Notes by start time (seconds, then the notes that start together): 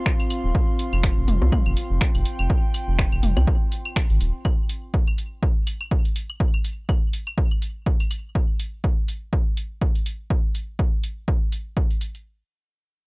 Already playing: C4 F4 F5 C6
0.06 finger snap, kick
0.20 open hi-hat, claves
0.30 open hi-hat, claves
0.44 D#1
0.55 kick
0.79 open hi-hat
0.93 F1, claves
1.03 finger snap, kick
1.17 F1
1.28 F1, open hi-hat, mid tom
1.42 C2, high bongo
1.52 kick, mid tom, claves
1.57 G5
1.66 F1, claves
1.77 open hi-hat
1.90 F1
2.01 finger snap, kick
2.15 F1, open hi-hat, claves
2.25 open hi-hat
2.39 F1, claves
2.50 kick
2.74 open hi-hat, claves
2.88 F1
2.99 finger snap, kick
3.12 F1, claves
3.23 F1, open hi-hat, mid tom
3.37 C2, high bongo, claves
3.47 kick
3.72 open hi-hat
3.85 claves
3.96 finger snap, kick, claves
4.10 G#1, open hi-hat
4.20 D#1, open hi-hat
4.45 kick, claves
4.69 open hi-hat
4.94 kick
5.08 claves
5.18 open hi-hat
5.43 kick
5.67 open hi-hat, claves
5.81 claves
5.91 kick
6.05 open hi-hat
6.16 open hi-hat
6.30 claves
6.40 kick
6.54 claves
6.64 open hi-hat
6.89 kick, claves
7.13 open hi-hat
7.27 claves
7.38 kick
7.51 claves
7.62 open hi-hat
7.86 kick
8.00 open hi-hat, claves
8.11 open hi-hat, claves
8.35 kick
8.60 open hi-hat
8.84 kick
9.08 open hi-hat
9.33 kick
9.57 open hi-hat
9.82 kick
9.95 open hi-hat
10.06 open hi-hat
10.30 kick
10.55 open hi-hat
10.79 kick
11.04 open hi-hat
11.28 kick
11.52 open hi-hat
11.77 kick
11.91 open hi-hat
12.01 open hi-hat
12.15 open hi-hat